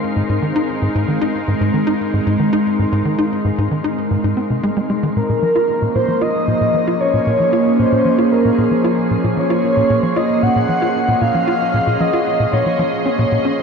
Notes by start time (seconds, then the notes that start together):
Already playing: G#3 C4 D#4 A#4 F5 C6
0.16 G#2
0.29 G#2
0.42 D#3
0.56 D#4
0.82 G#2
0.95 G#2
1.08 D#3
1.21 D#4
1.48 G#2
1.61 G#2
1.74 D#3
1.87 D#4
2.13 G#2
2.26 G#2
2.39 D#3
2.53 D#4
2.79 G#2
2.92 G#2
3.05 D#3
3.18 D#4
3.45 G#2
3.58 G#2
3.71 D#3
3.84 D#4
4.11 G#2
4.24 G#2
4.37 C4
4.50 C3
4.63 G#3
4.77 G#3
4.90 G#3
5.03 D#3
5.16 A#2 A#3 C#4 A#4 C6
5.24 F3
5.29 A#2
5.42 F3
5.55 F4
5.82 A#2
5.95 A#2 C5
6.04 G#4
6.08 F3
6.21 F4 D#5
6.32 C#4
6.48 A#2
6.61 A#2
6.74 F3
6.87 F4
7.00 C#5
7.14 A#2
7.27 A#2
7.40 F3
7.53 F4
7.79 A#2 C5
7.92 A#2
8.05 F3
8.18 F4
8.32 A#4
8.45 A#2
8.58 A#2
8.71 F3
8.84 F4
9.11 A#2
9.24 A#2
9.37 F3 C#5
9.50 F4
9.77 A#2
9.90 A#2
10.03 F3
10.16 F4 D#5
10.43 A#2 F#5
10.56 A#2 D#5
10.69 F3
10.82 F4
11.08 A#2
11.21 A#2 F5
11.34 F3
11.47 F4
11.74 A#2
11.87 A#2
12.00 F3 D#5
12.13 F4
12.40 A#2
12.53 A#2 C#5
12.66 F3
12.79 F3
13.06 C#4
13.19 A#2
13.32 A#2
13.45 C#4
13.58 G#3 C5